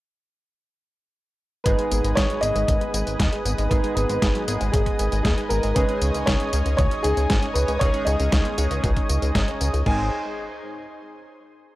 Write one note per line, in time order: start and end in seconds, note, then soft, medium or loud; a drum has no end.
1.64 1.75 G#1 loud
1.64 1.72 G#3 medium
1.64 2.40 G#3 loud
1.64 2.40 B3 medium
1.64 2.40 D#4 medium
1.64 2.40 G#4 loud
1.64 2.18 B4 medium
1.64 5.72 B4 medium
1.64 9.82 D#5 medium
1.64 9.82 G#5 medium
1.64 5.72 D#6 medium
1.64 kick loud
1.64 closed hi-hat medium
1.64 tambourine soft
1.79 1.89 G#3 medium
1.79 closed hi-hat soft
1.91 2.01 G#1 medium
1.91 2.02 B3 medium
1.91 closed hi-hat medium
1.91 tambourine medium
2.04 2.14 G#1 medium
2.04 2.10 G#3 medium
2.04 closed hi-hat soft
2.04 tambourine soft
2.15 2.27 G#1 loud
2.15 2.29 G#3 medium
2.15 2.40 C#5 loud
2.15 kick loud
2.15 snare loud
2.15 closed hi-hat medium
2.15 tambourine soft
2.30 2.42 F#3 medium
2.30 closed hi-hat soft
2.41 2.52 G#1 medium
2.41 3.68 G#3 medium
2.41 2.53 B3 medium
2.41 3.68 B3 medium
2.41 3.68 D#4 medium
2.41 3.68 G#4 medium
2.41 3.74 D#5 loud
2.41 closed hi-hat medium
2.41 tambourine medium
2.55 2.65 G#1 medium
2.55 2.68 G#3 loud
2.55 closed hi-hat soft
2.55 tambourine soft
2.68 2.78 G#1 loud
2.68 2.75 C#4 medium
2.68 kick loud
2.68 closed hi-hat medium
2.68 tambourine soft
2.81 2.92 G#3 medium
2.81 closed hi-hat soft
2.94 3.03 G#1 medium
2.94 3.04 B3 medium
2.94 closed hi-hat medium
2.94 tambourine medium
3.07 3.16 G#1 medium
3.07 3.13 G#3 medium
3.07 closed hi-hat soft
3.07 tambourine soft
3.20 3.29 D#2 loud
3.20 3.30 G#3 medium
3.20 kick loud
3.20 snare loud
3.20 closed hi-hat medium
3.20 tambourine soft
3.33 3.43 G#3 medium
3.33 closed hi-hat soft
3.45 3.55 G#1 medium
3.45 3.56 B3 medium
3.45 closed hi-hat soft
3.45 tambourine medium
3.58 3.68 G#1 medium
3.58 3.70 G#3 loud
3.58 closed hi-hat soft
3.58 tambourine soft
3.69 3.80 G#1 loud
3.69 4.45 G#3 loud
3.69 3.77 G#3 medium
3.69 4.45 B3 medium
3.69 4.45 D#4 medium
3.69 4.45 G#4 loud
3.69 3.94 B4 medium
3.69 kick loud
3.69 closed hi-hat medium
3.69 tambourine soft
3.84 3.94 G#3 medium
3.84 closed hi-hat soft
3.95 4.06 G#1 medium
3.95 4.07 B3 medium
3.95 4.43 B4 medium
3.95 closed hi-hat medium
3.95 tambourine medium
4.09 4.19 G#1 medium
4.09 4.16 G#3 medium
4.09 closed hi-hat soft
4.09 tambourine soft
4.22 4.32 G#1 loud
4.22 4.34 G#3 medium
4.22 kick loud
4.22 snare loud
4.22 closed hi-hat medium
4.22 tambourine soft
4.35 4.47 F#3 medium
4.35 closed hi-hat soft
4.48 4.57 G#1 medium
4.48 5.73 G#3 medium
4.48 5.73 B3 medium
4.48 4.58 B3 medium
4.48 5.73 D#4 medium
4.48 5.73 G#4 medium
4.48 closed hi-hat medium
4.48 tambourine medium
4.61 4.70 G#1 medium
4.61 4.73 G#3 loud
4.61 closed hi-hat soft
4.61 tambourine soft
4.72 4.83 G#1 loud
4.72 4.80 C#4 medium
4.72 5.22 G#4 medium
4.72 kick loud
4.72 closed hi-hat loud
4.72 tambourine soft
4.86 4.97 G#3 medium
4.86 kick medium
4.86 closed hi-hat soft
4.99 5.09 G#1 medium
4.99 5.09 B3 medium
4.99 closed hi-hat medium
4.99 tambourine medium
5.12 5.22 G#1 medium
5.12 5.18 G#3 medium
5.12 closed hi-hat soft
5.12 tambourine soft
5.23 5.34 D#2 loud
5.23 5.35 G#3 medium
5.23 5.29 G#4 medium
5.23 kick loud
5.23 snare loud
5.23 closed hi-hat medium
5.23 tambourine soft
5.38 5.48 G#3 medium
5.38 closed hi-hat soft
5.49 5.60 G#1 medium
5.49 5.61 B3 medium
5.49 5.76 A#4 medium
5.49 closed hi-hat soft
5.49 tambourine medium
5.63 5.73 G#1 medium
5.63 5.75 G#3 loud
5.63 closed hi-hat soft
5.63 tambourine soft
5.75 5.86 C#2 loud
5.75 6.50 G#3 loud
5.75 6.50 C#4 medium
5.75 5.82 C#4 medium
5.75 6.50 D#4 medium
5.75 6.50 G#4 loud
5.75 6.28 B4 medium
5.75 9.82 C#5 medium
5.75 9.82 D#6 medium
5.75 kick loud
5.75 closed hi-hat medium
5.75 tambourine soft
5.89 5.99 C#4 medium
5.89 closed hi-hat soft
6.02 6.11 C#2 medium
6.02 6.12 D#4 medium
6.02 closed hi-hat medium
6.02 tambourine medium
6.14 6.24 C#2 medium
6.14 6.21 C#4 medium
6.14 closed hi-hat soft
6.14 tambourine soft
6.26 6.37 C#2 loud
6.26 6.39 C#4 medium
6.26 6.74 C#5 medium
6.26 kick loud
6.26 snare loud
6.26 closed hi-hat medium
6.26 tambourine soft
6.40 6.52 B3 medium
6.40 closed hi-hat soft
6.53 6.63 C#2 medium
6.53 7.78 G#3 medium
6.53 7.78 C#4 medium
6.53 7.78 D#4 medium
6.53 6.63 D#4 medium
6.53 7.78 G#4 medium
6.53 closed hi-hat medium
6.53 tambourine medium
6.66 6.75 C#2 medium
6.66 6.78 C#4 loud
6.66 closed hi-hat soft
6.66 tambourine soft
6.77 6.88 C#2 loud
6.77 6.85 F#4 medium
6.77 7.04 C#5 loud
6.77 kick loud
6.77 closed hi-hat medium
6.77 tambourine soft
6.91 7.02 C#4 medium
6.91 closed hi-hat soft
7.03 7.14 C#2 medium
7.03 7.15 D#4 medium
7.03 7.56 G#4 loud
7.03 closed hi-hat medium
7.03 tambourine medium
7.17 7.27 C#2 medium
7.17 7.23 C#4 medium
7.17 closed hi-hat soft
7.17 tambourine soft
7.30 7.39 G#1 loud
7.30 7.40 C#4 medium
7.30 kick loud
7.30 snare loud
7.30 closed hi-hat medium
7.30 tambourine soft
7.43 7.53 C#4 medium
7.43 closed hi-hat soft
7.54 7.65 C#2 medium
7.54 7.66 D#4 medium
7.54 7.81 B4 medium
7.54 closed hi-hat soft
7.54 tambourine medium
7.68 7.78 C#2 medium
7.68 7.80 C#4 loud
7.68 closed hi-hat soft
7.68 tambourine soft
7.79 7.91 C#2 loud
7.79 8.55 G#3 loud
7.79 8.55 C#4 medium
7.79 7.87 C#4 medium
7.79 8.55 D#4 medium
7.79 8.55 G#4 loud
7.79 8.04 C#5 loud
7.79 kick loud
7.79 closed hi-hat medium
7.79 tambourine soft
7.94 8.04 C#4 medium
7.94 closed hi-hat soft
8.05 8.16 C#2 loud
8.05 8.17 D#4 medium
8.05 9.56 D#5 loud
8.05 closed hi-hat medium
8.05 tambourine medium
8.20 8.29 C#2 medium
8.20 8.26 C#4 medium
8.20 closed hi-hat soft
8.20 tambourine soft
8.32 8.42 C#2 loud
8.32 8.45 C#4 medium
8.32 kick loud
8.32 snare loud
8.32 closed hi-hat medium
8.32 tambourine soft
8.45 8.57 B3 medium
8.45 closed hi-hat soft
8.58 8.68 C#2 medium
8.58 9.83 G#3 medium
8.58 9.83 C#4 medium
8.58 9.83 D#4 medium
8.58 8.68 D#4 medium
8.58 9.83 G#4 medium
8.58 closed hi-hat medium
8.58 tambourine medium
8.71 8.80 C#2 medium
8.71 8.83 C#4 loud
8.71 closed hi-hat soft
8.71 tambourine soft
8.84 8.93 C#2 loud
8.84 8.90 F#4 medium
8.84 kick loud
8.84 closed hi-hat medium
8.84 tambourine soft
8.96 9.07 C#4 medium
8.96 kick medium
8.96 closed hi-hat soft
9.09 9.19 C#2 medium
9.09 9.16 C#5 medium
9.09 closed hi-hat medium
9.09 tambourine medium
9.22 9.32 C#2 medium
9.22 9.34 G#3 medium
9.22 closed hi-hat soft
9.22 tambourine soft
9.35 9.45 G#1 loud
9.35 9.47 C#4 loud
9.35 kick loud
9.35 snare loud
9.35 closed hi-hat medium
9.35 tambourine soft
9.48 9.58 C#4 medium
9.48 closed hi-hat soft
9.61 9.70 C#2 loud
9.61 9.71 C#4 medium
9.61 closed hi-hat soft
9.61 tambourine medium
9.73 9.83 C#2 medium
9.73 9.84 C#5 medium
9.73 closed hi-hat soft
9.73 tambourine soft
9.86 10.10 G#1 medium
9.86 10.05 G#3 medium
9.86 10.10 G#3 medium
9.86 10.05 C4 medium
9.86 10.05 D#4 medium
9.86 10.10 D#4 medium
9.86 10.05 G#4 medium
9.86 10.10 G#4 medium
9.86 10.10 C5 medium
9.86 10.10 G#5 medium
9.86 10.10 C6 medium
9.86 kick loud
9.86 crash medium